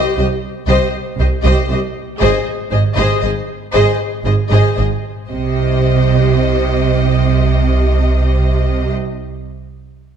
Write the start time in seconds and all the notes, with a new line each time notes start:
Already playing: G4 C5 D#5
0.17 C2 G4 C5 D#5
0.68 C2 G4 C5 D#5
1.18 C2 G4 C5 D#5
1.44 C2 G4 C5 D#5
1.69 C2 G4 C5 D#5
2.20 G#1 G#2 G#4 C5 D#5
2.71 G#1 G#2 G#4 C5 D#5
2.96 G#1 G#2 G#4 C5 D#5
3.20 G#1 G#2 G#4 C5 D#5
3.73 G#1 G#2 G#4 C5 D#5
4.25 G#1 G#2 G#4 C5 D#5
4.50 G#1 G#2 G#4 C5 D#5
4.75 G#1 G#2 G#4 C5 D#5
5.29 C2 C3 G4 C5 D#5